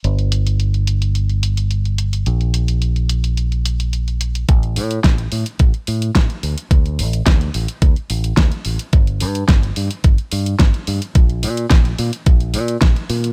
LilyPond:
<<
  \new Staff \with { instrumentName = "Fingered electric bass" } { \clef bass \time 4/4 \key d \minor \tempo 4 = 108 g,,1 | bes,,1 | a,,8 a,8 a,,8 a,8 a,,8 a,8 a,,8 d,8 | d,8 a,,8 d,8 a,,8 d,8 a,,8 d,8 a,,8 |
g,,8 g,8 g,,8 g,8 g,,8 g,8 g,,8 g,8 | bes,,8 bes,8 bes,,8 bes,8 bes,,8 bes,8 bes,,8 bes,8 | }
  \new DrumStaff \with { instrumentName = "Drums" } \drummode { \time 4/4 hh16 hh16 hh16 hh16 hh16 hh16 hh16 hh16 hh16 hh16 hh16 hh16 hh16 hh16 hh16 hh16 | hh16 hh16 hh16 hh16 hh16 hh16 hh16 hh16 hh16 hh16 hh16 hh16 hh16 hh16 hh16 hh16 | <hh bd>16 hh16 hho16 hh16 <hh bd sn>16 hh16 hho16 hh16 <hh bd>16 hh16 hho16 hh16 <hh bd sn>16 hh16 hho16 hh16 | <hh bd>16 hh16 hho16 hh16 <hh bd sn>16 hh16 hho16 hh16 <hh bd>16 hh16 hho16 hh16 <hh bd sn>16 hh16 hho16 hh16 |
<hh bd>16 hh16 hho16 hh16 <hh bd sn>16 hh16 hho16 hh16 <hh bd>16 hh16 hho16 hh16 <hh bd sn>16 hh16 hho16 hh16 | <hh bd>16 hh16 hho16 hh16 <hh bd sn>16 hh16 hho16 hh16 <hh bd>16 hh16 hho16 hh16 <hh bd sn>16 hh16 hho16 hh16 | }
>>